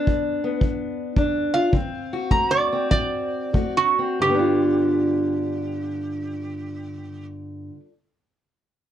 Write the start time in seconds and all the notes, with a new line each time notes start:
Already playing: B3 D4
0.07 D3, kick
0.44 B3
0.61 G2, kick
1.16 D3 D4, kick
1.54 F4 F5
1.72 D3 C4, kick
2.13 F#4
2.31 A3 A#5, kick
2.51 D5
2.73 C4
2.91 A2 D5, kick
3.53 A3 F#4, kick
3.77 F#4
3.99 C4
4.19 G2 G4
4.25 D3
4.30 B3
4.34 D4
4.39 F4